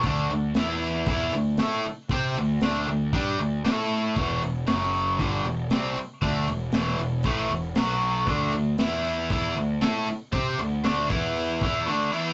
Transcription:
<<
  \new Staff \with { instrumentName = "Overdriven electric guitar" } { \time 4/4 \key d \mixolydian \tempo 4 = 117 <d a d'>8 <d a>8 <e b e'>4 <e b e'>8 <d a>8 <a e' a'>8 r8 | <c' g' c''>8 <d a>8 <d a d'>8 <d a>8 <g d' g'>8 <d a>8 <a e' a'>4 | <e, b, e>8 <e, b,>8 <fis, cis fis>4 <g, d g>8 <e, b,>8 <c g c'>8 r8 | <d a d'>8 <e, b,>8 <e, b, e>8 <e, b,>8 <a, e a>8 <e, b,>8 <b, fis b>4 |
<d a d'>8 <d a>8 <e b e'>4 <e b e'>8 <d a>8 <a e' a'>8 r8 | <c' g' c''>8 <d a>8 <d a d'>8 <e b e'>4 <e b e'>8 <d a d'>8 <e b e'>8 | }
  \new Staff \with { instrumentName = "Picked electric bass" } { \clef bass \time 4/4 \key d \mixolydian d,8 d,8 e,4 e,8 d,8 a,8 r8 | c8 d,8 d,8 d,8 g,8 d,8 a,4 | e,,8 e,,8 fis,,4 g,,8 e,,8 c,8 r8 | d,8 e,,8 e,,8 e,,8 a,,8 e,,8 b,,4 |
d,8 d,8 e,4 e,8 d,8 a,8 r8 | c8 d,8 d,8 e,4 e,8 r4 | }
  \new DrumStaff \with { instrumentName = "Drums" } \drummode { \time 4/4 <hho bd>8 hho8 <hho sn>8 hho8 <hho bd>8 hho8 <hho sn>8 hho8 | <hho bd>8 hho8 <hho sn>8 hho8 <hho bd>8 hho8 <hho sn>8 hho8 | <hho bd>8 hho8 <hho sn>16 sn16 hho8 <hho bd>8 hho8 <hho sn>8 hho8 | <hho bd>8 hho8 <hho sn>16 sn16 hho8 <hho bd>8 hho8 <hho sn>8 hho8 |
<hho bd>8 hho8 <hho sn>8 hho8 <hho bd>8 hho8 <hho sn>8 hho8 | <hho bd>8 hho8 <hho sn>8 <hho bd>8 hho8 <hho bd>8 r4 | }
>>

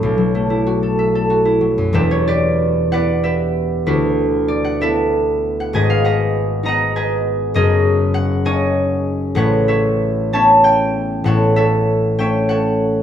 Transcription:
<<
  \new Staff \with { instrumentName = "Harp" } { \time 6/8 \key fis \phrygian \tempo 4. = 64 << { r2. | e''16 cis''16 d''4 fis''8 e''4 | b'4 d''16 fis''16 e''4~ e''16 fis''16 | gis''16 f''16 fis''4 ais''8 gis''4 |
dis''4 fis''8 gis''4. | fis''8 e''4 a''8 g''4 | fis''8 e''4 g''8 fis''4 | } \\ { r2. | <g' b'>8 <g' b'>4 <b' d''>8 <g' b'>4 | <e' fis'>4. <a' b'>4. | <b' dis''>8 <b' dis''>4 <dis'' fis''>8 <b' dis''>4 |
<gis' ais'>4. <cis'' dis''>4. | <b' cis''>8 <b' cis''>4 <cis'' e''>4. | <a' cis''>8 <a' cis''>4 <cis'' e''>8 <a' cis''>4 | } >> }
  \new Staff \with { instrumentName = "Harp" } { \time 6/8 \key fis \phrygian <b,, fis a e' fis' a' e''>16 fis16 a16 e'16 fis'16 a'16 e''16 a'16 fis'16 e'16 fis16 fis,16 | <e,, e,>4. <b e'>4. | d,4. <b e'>4. | <gis,, gis,>4. <b dis'>4. |
<fis,, fis,>4. <ais dis'>4. | <a,, a,>4. <b cis'>4. | <a,, a,>4. <a cis'>4. | }
>>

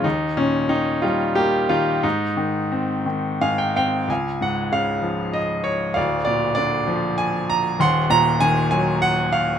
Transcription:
<<
  \new Staff \with { instrumentName = "Grand piano" } { \time 3/4 \key aes \major \tempo 4 = 96 << { r2. | r2 aes''16 g''16 f''8 | \key des \major f''4. r4. | d''4. r4. |
ges''4. r4. | } \\ { ees'8 des'8 ees'8 f'8 g'8 f'8 | ees'2 f''8 g''8 | aes''8 ges''8 f''4 ees''8 des''8 | f''8 d''8 d''4 aes''8 bes''8 |
c'''8 bes''8 aes''8 aes''8 ges''8 f''8 | } >> }
  \new Staff \with { instrumentName = "Grand piano" } { \clef bass \time 3/4 \key aes \major ees,8 bes,8 ees8 g8 bes8 ees8 | aes,8 ees8 c'8 ees8 aes,8 c'8 | \key des \major des,8 aes,8 des8 f4. | <d,, d,>8 bes,8 d8 f4. |
<ees,, ees,>8 bes,8 ees8 ges4. | }
>>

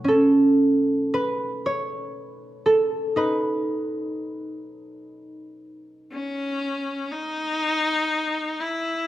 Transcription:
<<
  \new Staff \with { instrumentName = "Harp" } { \time 6/8 \key b \mixolydian \tempo 4. = 40 << { a'4 b'8 cis''4 a'8 | b'2~ b'8 r8 | r2. | } \\ { cis'4. r4. | dis'2~ dis'8 r8 | r2. | } >> }
  \new Staff \with { instrumentName = "Viola" } { \time 6/8 \key b \mixolydian r2. | r2. | cis'4 dis'4. e'8 | }
>>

